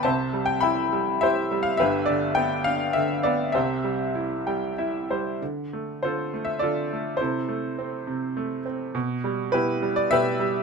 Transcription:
<<
  \new Staff \with { instrumentName = "Upright piano" } { \time 3/4 \key d \dorian \tempo 4 = 102 << { a''8. g''16 b''8. r16 e''8. f''16 | e''8 d''8 g''8 f''8 e''8 d''8 | e''2 r4 | r4 c''8. e''16 d''4 |
c''2~ c''8 r8 | r4 b'8. d''16 e''4 | } \\ { <c'' e''>4 <e'' g''>4 <g' c''>4 | <g' b'>4. r4. | <g' c''>2 r4 | r4 <f' a'>4 <f' a'>4 |
<e' a'>2~ <e' a'>8 r8 | r4 <e' g'>4 <g' b'>4 | } >> }
  \new Staff \with { instrumentName = "Upright piano" } { \clef bass \time 3/4 \key d \dorian <c, c>8 g8 e'8 g8 e'8 g8 | <g,, g,>8 d8 b8 d'8 d8 b8 | <c, c>8 g8 e'8 <g g''>8 <e' e''>8 <g c''>8 | d8 a8 d8 a8 d8 a8 |
c8 a8 c'8 c8 a8 c'8 | b,8 g8 b,8 g8 b,8 g8 | }
>>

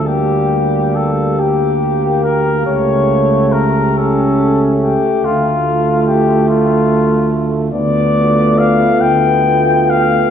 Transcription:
<<
  \new Staff \with { instrumentName = "Cornet" } { \time 6/8 \key d \minor \tempo 4. = 47 g'4 a'8 g'4 bes'8 | cis''4 bes'8 a'4 g'8 | f'4 g'8 f'4 r8 | \key d \dorian d''4 f''8 g''4 f''8 | }
  \new Staff \with { instrumentName = "French horn section" } { \time 6/8 \key d \minor g'2.~ | g'2. | f'2. | \key d \dorian r8 f'4. f'4 | }
  \new Staff \with { instrumentName = "Trombone" } { \time 6/8 \key d \minor g4. bes4. | a4. cis'4 r8 | a2. | \key d \dorian b2. | }
  \new Staff \with { instrumentName = "Euphonium" } { \time 6/8 \key d \minor bes2.~ | bes4 r8 a4.~ | a2. | \key d \dorian r8 a4. a4 | }
  \new Staff \with { instrumentName = "Tuba" } { \clef bass \time 6/8 \key d \minor d,2. | cis,2~ cis,8 r8 | d,2. | \key d \dorian d,4. d,4. | }
>>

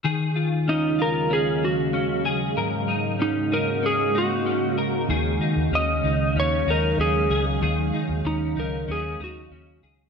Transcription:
<<
  \new Staff \with { instrumentName = "Electric slide guitar" } { \time 4/4 \key ees \minor \tempo 4 = 95 r4 ees'8 bes'8 aes'8 ges'4 r8 | r4 ees'8 bes'8 aes'8 ges'4 r8 | r4 ees''4 des''8 bes'8 aes'8. r16 | r4 ees'8 bes'8 aes'8 ges'4 r8 | }
  \new Staff \with { instrumentName = "Clean electric guitar" } { \time 4/4 \key ees \minor <ees aes'>8 f'8 des'8 f'8 des'4 des'8 aes'8 | <aes, bes'>8 ees'8 des'8 ees'8 des'8 ees'8 des'8 bes'8 | <ees aes'>8 ees'8 des'8 ees'8 des'8 ees'8 des'8 aes'8 | <ees aes'>8 ees'8 des'8 ees'8 des'8 ees'8 des'8 aes'8 | }
  \new Staff \with { instrumentName = "Ambient pad" } { \clef bass \time 4/4 \key ees \minor << { <ees, ges aes f''>1 | <aes bes ges'>1 | <ges aes f''>1~ | <ges aes f''>1 | } \\ { des1 | des1~ | des1~ | des1 | } >> }
  \new Staff \with { instrumentName = "Fingered electric bass" } { \clef bass \time 4/4 \key ees \minor r1 | r1 | ees,8 r16 ees,16 ees,8 des,8 ees,8 ees,8 ees,8 des,8 | ees,8 r16 ees,16 ees,8 des,8 ees,8 ees,8 ees,8 des,8 | }
>>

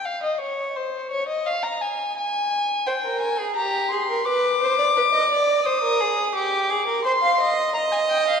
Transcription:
<<
  \new Staff \with { instrumentName = "Violin" } { \time 4/4 \key c \phrygian \tempo 4 = 86 f''16 ees''16 des''8 c''8 des''16 ees''16 f''16 bes''16 aes''8 aes''4 | g''8 aes''8 bes''8 c'''8 d'''2 | ees'''4 d'''4 c'''4 bes''16 aes''16 g''16 f''16 | }
  \new Staff \with { instrumentName = "Violin" } { \time 4/4 \key c \phrygian r1 | c''16 bes'8 aes'16 g'8 aes'16 bes'16 b'8 c''16 d''16 b'16 ees''16 d''8 | c''16 bes'16 aes'8 g'8 aes'16 bes'16 c''16 f''16 ees''8 ees''4 | }
>>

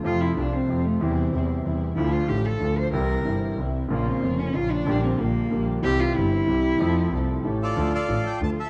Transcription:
<<
  \new Staff \with { instrumentName = "Bandoneon" } { \time 3/4 \key c \mixolydian \tempo 4 = 186 << { r2. | r2. | r2. | r2. |
r2. | r2. | r2. | r2 r8 d''8~ |
\key d \minor d''8 f''4 g''8 a''8 e''8 | } \\ { r2. | r2. | r2. | r2. |
r2. | r2. | r2. | r2 r8 <f' a'>8~ |
<f' a'>8 <a' d''>4. r8 a'8 | } >> }
  \new Staff \with { instrumentName = "Cello" } { \time 3/4 \key c \mixolydian f'8 e'8 d'8 c'4 a8 | c'2 r4 | e'8 f'8 g'8 a'4 c''8 | bes'2 r4 |
bes8 c'4 des'8 f'8 d'8~ | d'8 c'8 bes4. r8 | g'8 f'8 e'2~ | e'2 r4 |
\key d \minor f'2. | }
  \new Staff \with { instrumentName = "String section" } { \time 3/4 \key c \mixolydian <a c' f'>4 <a c' f'>4 <a c' f'>4 | <g c' e'>4 <g c' e'>4 <g c' e'>4 | <a d' f'>4 <a d' f'>4 <a d' f'>4 | <g c' e'>4 <g c' e'>4 <g c' e'>4 |
<bes des' f'>4 <bes des' f'>4 <bes des' f'>4 | <bes d' g'>4 <bes d' g'>4 <bes d' g'>4 | <c' e' g'>4 <c' e' g'>4 <c' e' g'>4 | <f c' a'>4 <f c' a'>4 <cis' g' a'>4 |
\key d \minor r2. | }
  \new Staff \with { instrumentName = "Upright piano" } { \clef bass \time 3/4 \key c \mixolydian <f, c f a f'>4 <c, c f a f'>4 <f, c f a f'>4 | <e, c e g e'>4 <e, c e g e'>4 <e, c e g e'>4 | <d, d f a f'>4 <a,, a, d f a f'>4 <d, d f a f'>4 | <c, c e g e'>4 <g,, g, c e g e'>4 <c, c e g e'>4 |
<bes,, bes, des f bes f'>4 <f,, f, des f bes f'>4 <bes,, bes, des f bes f'>4 | <bes,, bes, d g bes g'>4 <bes,, bes, d g bes g'>4 <bes,, bes, d g bes g'>4 | <c, c e g c' g'>4 <g,, g, e g c' g'>4 <c, c e g c' g'>4 | <f, f a c' a'>4 <c, c f a c' a'>4 <a,, a, e a cis' g'>4 |
\key d \minor <d, d f a d' a'>8 r8 <a,, a, f a d' a'>8 r8 <d, d f a d' a'>8 r8 | }
  \new Staff \with { instrumentName = "Double bass" } { \clef bass \time 3/4 \key c \mixolydian f,4 c,4 f,4 | e,4 e,4 e,4 | d,4 a,,4 d,4 | c,4 g,,4 c,4 |
bes,,4 f,,4 bes,,4 | bes,,4 bes,,4 bes,,4 | c,4 g,,4 c,4 | f,4 c,4 a,,4 |
\key d \minor d,8 r8 a,,8 r8 d,8 r8 | }
>>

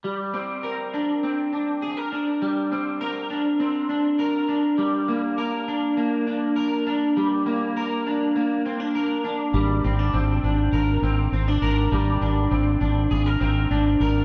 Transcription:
<<
  \new Staff \with { instrumentName = "Clean electric guitar" } { \time 4/4 \key aes \lydian \tempo 4 = 101 g8 c'8 bes'8 d'8 c'8 d'8 aes'16 bes'16 d'8 | g8 c'8 bes'8 d'8 c'8 d'8 bes'8 d'8 | g8 bes8 bes'8 d'8 bes8 d'8 bes'8 d'8 | g8 bes8 bes'8 d'8 bes8 c'16 d'16 bes'8 d'8 |
g8 c'16 d'16 c'8 d'8 bes'8 c'8 c'16 d'16 bes'8 | g8 d'8 c'8 d'8 aes'16 bes'16 c'8 d'8 bes'8 | }
  \new Staff \with { instrumentName = "Fretless electric bass" } { \clef bass \time 4/4 \key aes \lydian r1 | r1 | r1 | r1 |
aes,,8 aes,,8 aes,,8 aes,,8 aes,,8 aes,,8 aes,,8 aes,,8 | aes,,8 aes,,8 aes,,8 aes,,8 aes,,8 aes,,8 aes,,8 aes,,8 | }
>>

